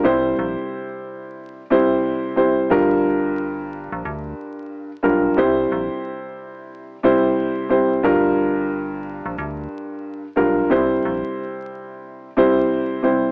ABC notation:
X:1
M:4/4
L:1/16
Q:"Swing 16ths" 1/4=90
K:Cmix
V:1 name="Grand piano"
[C,G,Ec]8- [C,G,Ec]2 [C,G,Ec]4 [C,G,Ec]2 | [G,,G,FB]12 z2 [G,,G,FB]2 | [C,G,Ec]8- [C,G,Ec]2 [C,G,Ec]4 [C,G,Ec]2 | [G,,G,FB]12 z2 [G,,G,FB]2 |
[C,G,Ec]8- [C,G,Ec]2 [C,G,Ec]4 [C,G,Ec]2 |]
V:2 name="FM bass" clef=bass
C,,2 B,,, z12 z | G,,,6- G,,, B,,, D,,2 z4 =B,,,2 | C,,2 B,,, z12 z | G,,,6- G,,, B,,, D,,2 z4 =B,,,2 |
C,,2 B,,, z12 z |]